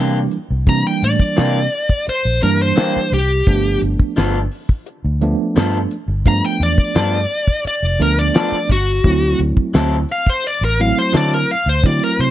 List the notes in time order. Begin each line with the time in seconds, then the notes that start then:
Already playing: C3 E3 G3 A#3 D4 G4
0.31 closed hi-hat
0.51 C2
0.67 C3 E3 G3 A#3 D4 A#5, kick, closed hi-hat
0.87 G5
1.02 A2 D5, closed hi-hat
1.20 kick
1.36 C3 E3 A#3 D4 G4, snare, closed hi-hat
1.72 open hi-hat
1.89 kick
2.07 C5, muted fingered electric bass stroke, closed hi-hat
2.25 A#1
2.42 G2 E3 G3 A#3 D4 A#4, closed hi-hat
2.62 C5
2.76 E3 A#3 D4 G4, snare, closed hi-hat
2.96 muted fingered electric bass stroke
3.12 C2 G4, closed hi-hat
3.47 G1 F3 A3 B3 D4, kick, closed hi-hat
3.82 G1, closed hi-hat
3.99 kick
4.16 G1 F3 B3 D4 A4, snare, closed hi-hat
4.52 open hi-hat
4.69 kick
4.86 closed hi-hat
5.05 D2
5.21 F3 A3 B3 D4, closed hi-hat
5.56 G2 F3 B3 D4 A4, snare, closed hi-hat
5.91 closed hi-hat
6.08 G1
6.26 G2 F3 A3 B3 D4 A#5, kick, closed hi-hat
6.46 G5
6.60 E2 D5, closed hi-hat
6.78 kick
6.95 G2 F3 B3 D4 A4, snare, closed hi-hat
7.30 closed hi-hat
7.47 kick
7.65 D5, muted fingered electric bass stroke, closed hi-hat
7.83 F1
7.99 D2 F3 A3 B3 D4 A#4, closed hi-hat
8.19 D5
8.35 F3 B3 D4 A4, snare, closed hi-hat
8.52 muted fingered electric bass stroke
8.69 G1 F#4, kick, open hi-hat
9.04 D2 F#3 A3 C4 E4, kick, closed hi-hat
9.39 D2, closed hi-hat
9.57 kick
9.74 D2 F#3 C4 E4 A4, snare, closed hi-hat
10.09 F5, open hi-hat
10.27 C5, kick
10.44 D5, closed hi-hat
10.61 A1 A#4
10.79 F#3 A3 C4 E4 F5, closed hi-hat
10.97 C5, snare
11.13 D3 F#3 C4 E4 A4 D5, snare, closed hi-hat
11.34 A#4
11.49 F5, closed hi-hat
11.66 D2 C5
11.84 D3 F#3 A3 C4 E4 D5, kick, closed hi-hat
12.04 A#4
12.19 C3 C5, closed hi-hat